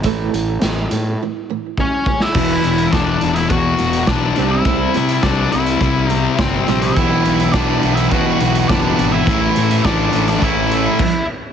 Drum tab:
CC |----------------|x---------------|----------------|----------------|
HH |x-x-x-x---------|--xxx-xxx-xxx-x-|x-xxx-xxx-x-x-xx|x-xxx-xxx-xxx-x-|
SD |----o----------o|----o--o----o---|----o-------o---|----o-------o---|
BD |o-----------o-o-|o---o---o---o---|o---o---o---o---|o---o---o---o---|

CC |------------x---|
HH |x-xxx-xxx-x-----|
SD |----o--o--------|
BD |o---o---o---o---|